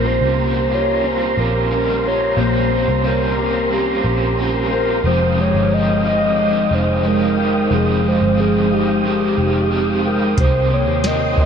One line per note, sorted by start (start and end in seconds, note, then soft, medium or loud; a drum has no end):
0.00 0.19 A#1 medium
0.00 2.36 A#3 medium
0.00 5.00 G4 medium
0.00 5.00 A#4 soft
0.00 1.07 C5 medium
0.00 5.00 A#5 soft
0.00 5.00 C6 medium
0.04 0.37 C4 soft
0.04 0.38 C#4 soft
0.04 0.38 F4 soft
0.04 0.76 C5 medium
0.21 1.34 C2 medium
0.37 0.71 A#2 medium
0.37 0.71 G3 medium
0.37 0.72 C4 medium
0.37 0.71 C#4 medium
0.37 0.69 F4 medium
0.70 1.05 C#4 soft
0.70 1.04 F4 soft
0.70 1.37 G4 medium
0.70 1.09 C#5 medium
1.03 1.37 G3 medium
1.03 1.38 C4 medium
1.03 1.36 C#4 medium
1.07 1.34 F4 medium
1.07 1.42 C5 loud
1.35 2.34 A#1 medium
1.35 1.70 C4 soft
1.35 1.71 C#4 soft
1.35 1.70 F4 soft
1.35 3.36 G4 soft
1.40 1.72 A#4 medium
1.70 2.04 A#2 medium
1.70 2.04 G3 medium
1.70 2.05 C4 medium
1.70 2.05 C#4 medium
1.70 2.02 F4 medium
1.70 2.09 A#4 medium
2.04 2.38 C#4 soft
2.04 2.37 F4 soft
2.04 2.42 C#5 medium
2.37 2.85 A#1 medium
2.37 2.71 A#2 medium
2.37 2.71 G3 medium
2.37 5.04 A#3 medium
2.37 2.71 C4 medium
2.37 2.70 C#4 medium
2.37 2.68 F4 medium
2.37 3.04 C5 medium
2.41 3.09 C5 medium
2.69 3.03 C4 soft
2.69 3.04 C#4 soft
2.69 3.04 F4 soft
2.88 4.01 C2 medium
3.03 3.37 A#2 medium
3.03 3.38 G3 medium
3.03 3.38 C4 medium
3.03 3.37 C#4 medium
3.03 3.35 F4 medium
3.03 4.71 C5 medium
3.07 3.73 A#4 medium
3.36 3.70 C4 soft
3.36 3.70 C#4 soft
3.36 3.70 F4 soft
3.36 4.04 G4 medium
3.69 4.04 G3 medium
3.69 4.04 C4 medium
3.69 4.04 C#4 medium
3.69 4.02 F4 medium
3.74 4.69 G4 medium
4.03 5.01 A#1 medium
4.03 4.36 C4 soft
4.03 4.37 C#4 soft
4.03 4.37 F4 soft
4.03 5.07 G4 medium
4.36 4.70 A#2 medium
4.36 4.71 G3 medium
4.36 4.71 C4 medium
4.36 4.70 C#4 medium
4.36 4.68 F4 medium
4.70 5.04 C4 soft
4.70 5.05 C#4 soft
4.70 5.04 F4 soft
4.70 5.05 C5 medium
4.74 5.08 A#4 medium
5.03 5.52 F1 medium
5.03 5.37 F2 medium
5.03 5.37 C3 medium
5.03 5.38 D#3 medium
5.03 7.70 F3 medium
5.03 5.38 G#3 medium
5.03 10.34 G#3 medium
5.03 5.38 C4 medium
5.03 5.35 G4 medium
5.03 5.39 C5 medium
5.03 10.34 F5 medium
5.03 7.69 G5 medium
5.03 11.46 D#6 medium
5.37 5.69 D#3 soft
5.37 5.70 G#3 soft
5.37 5.71 G4 soft
5.41 5.75 C#5 medium
5.54 6.67 G1 medium
5.69 6.04 F2 medium
5.69 6.04 C3 medium
5.69 6.04 D#3 medium
5.69 6.04 G#3 medium
5.69 6.03 C4 medium
5.69 6.02 G4 medium
5.74 6.06 D#5 medium
6.03 6.35 D#3 soft
6.03 6.36 G#3 soft
6.03 6.38 C4 soft
6.03 6.71 D#4 medium
6.03 6.37 G4 soft
6.07 6.76 D#5 loud
6.36 6.70 D#3 medium
6.36 6.70 G#3 medium
6.36 6.69 C4 medium
6.36 6.68 G4 medium
6.69 7.67 F1 medium
6.69 7.02 D#3 soft
6.69 7.03 G#3 soft
6.69 7.03 C4 soft
6.69 8.71 D#4 medium
6.69 7.04 G4 soft
6.74 7.09 C5 medium
7.03 7.37 F2 medium
7.03 7.37 C3 medium
7.03 7.37 D#3 medium
7.03 7.38 G#3 medium
7.03 7.36 C4 medium
7.03 7.35 G4 medium
7.08 7.73 A#4 loud
7.36 7.70 D#3 soft
7.36 7.70 G#3 soft
7.36 7.71 C4 soft
7.36 7.70 G4 soft
7.70 8.19 F1 medium
7.70 8.04 F2 medium
7.70 8.04 C3 medium
7.70 8.04 D#3 medium
7.70 10.38 F3 medium
7.70 8.04 G#3 medium
7.70 8.03 C4 medium
7.70 10.35 G5 soft
7.75 8.10 G#4 medium
8.03 8.36 D#3 soft
8.03 8.37 G#3 soft
8.03 8.37 C4 soft
8.03 8.37 G4 soft
8.08 8.42 C5 medium
8.21 9.34 G1 medium
8.36 8.70 F2 medium
8.36 8.71 C3 medium
8.36 8.71 D#3 medium
8.36 8.71 G#3 medium
8.36 8.70 C4 medium
8.40 8.75 G#4 medium
8.70 9.02 D#3 soft
8.70 9.04 G#3 soft
8.70 9.05 C4 soft
8.70 9.37 D#4 medium
8.70 9.04 G4 soft
8.70 10.08 G4 medium
9.04 9.37 D#3 medium
9.04 9.38 G#3 medium
9.04 9.37 C4 medium
9.04 9.35 G4 medium
9.37 10.34 F1 medium
9.37 9.70 D#3 soft
9.37 9.70 G#3 soft
9.37 9.71 C4 soft
9.37 11.37 D#4 soft
9.37 9.71 G4 soft
9.70 10.04 F2 medium
9.70 10.04 C3 medium
9.70 10.04 D#3 medium
9.70 10.05 G#3 medium
9.70 10.03 C4 medium
9.70 10.02 G4 medium
10.03 10.36 D#3 soft
10.03 10.38 G#3 soft
10.03 10.38 C4 soft
10.03 10.37 G4 soft
10.03 10.42 A#4 loud
10.37 10.87 C2 medium
10.37 10.71 C3 medium
10.37 10.71 D#3 medium
10.37 10.71 A#3 medium
10.37 10.72 C4 medium
10.37 10.68 G4 medium
10.37 11.46 A#4 medium
10.37 10.75 C5 loud
10.37 11.46 G5 medium
10.37 11.46 C6 medium
10.37 kick loud
10.37 closed hi-hat medium
10.70 11.04 A#3 soft
10.70 11.04 G4 soft
10.74 11.08 C#5 medium
10.87 11.46 D#2 medium
11.03 11.37 C3 medium
11.03 11.38 D#3 medium
11.03 11.38 A#3 medium
11.03 11.37 C4 medium
11.03 11.35 G4 medium
11.03 11.39 D#5 medium
11.03 snare loud
11.03 closed hi-hat medium
11.36 11.46 A#3 soft
11.36 11.46 C4 soft
11.36 11.46 D#4 soft
11.36 11.46 G4 soft
11.36 kick medium
11.41 11.46 D#5 loud